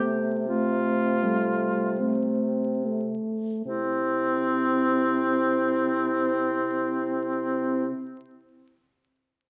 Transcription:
Already playing: bassoon C3, french horn A3, oboe G4
0.48 clarinet A3, french horn C4, oboe F4
1.23 clarinet G3, french horn A3
2.00 clarinet A3, french horn C4
2.85 french horn A3
3.65 bassoon C3, oboe C4, french horn C4, clarinet E4

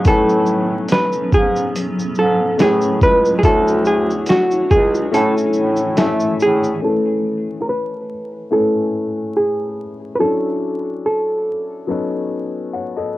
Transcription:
Already playing: ambient pad F#3
0.05 bass clarinet A2, upright piano A3 C#4 E4 B4 G#5, ambient pad B3 C#4, hollow-body jazz guitar A4, kick, closed hi-hat, shaker
0.29 shaker
0.46 shaker
0.88 hollow-body jazz guitar B4, snare, closed hi-hat, shaker
1.13 shaker
1.33 bass clarinet G#2, hollow-body jazz guitar G#4, kick, shaker
1.56 shaker
1.76 closed hi-hat, shaker
1.99 bass clarinet G#2, shaker
2.15 bass clarinet G#2, hollow-body jazz guitar A4, shaker
2.58 bass clarinet A2, upright piano A3 C#4 E4 G#4 B4, hollow-body jazz guitar G#4, snare, closed hi-hat, shaker
2.81 shaker
3.02 bass clarinet C#2, hollow-body jazz guitar B4, kick, shaker
3.25 shaker
3.39 upright piano A3, hollow-body jazz guitar G#4
3.43 bass clarinet D2, upright piano D4 E4 F#4 C#5, ambient pad D4 E4 F#4 C#5, hollow-body jazz guitar A4, kick, closed hi-hat, shaker
3.68 shaker
3.85 hollow-body jazz guitar G#4, shaker
4.10 shaker
4.26 hollow-body jazz guitar F#4, snare, closed hi-hat, shaker
4.51 shaker
4.71 bass clarinet C#2, hollow-body jazz guitar G#4, kick, shaker
4.95 shaker
5.11 bass clarinet A2, ambient pad E3 A3, upright piano A3 C#4 E4 C#5 G#5, hollow-body jazz guitar A4, closed hi-hat, shaker
5.37 bass clarinet A2, shaker
5.53 bass clarinet A2, shaker
5.76 shaker
5.97 upright piano A3 C#4 E4 D5 G#5, bass clarinet A3, snare, closed hi-hat, shaker
6.07 upright piano E5
6.20 shaker
6.40 bass clarinet A2, hollow-body jazz guitar G#4, shaker
6.64 shaker
6.82 upright piano A3 C#4 E4 B4 G#5, hollow-body jazz guitar A4
7.62 hollow-body jazz guitar A#4
7.69 hollow-body jazz guitar B4
8.51 upright piano A3 C#4 E4 B4 G#5, hollow-body jazz guitar A4
9.37 hollow-body jazz guitar G#4
10.15 upright piano F#3, hollow-body jazz guitar B4
10.20 upright piano C#4 D4 E4 A4, hollow-body jazz guitar A4
11.06 hollow-body jazz guitar A4
11.87 upright piano F#3 B3 C#4 D#4 A4
12.73 upright piano C#5 F#5
12.96 upright piano A4 D#5

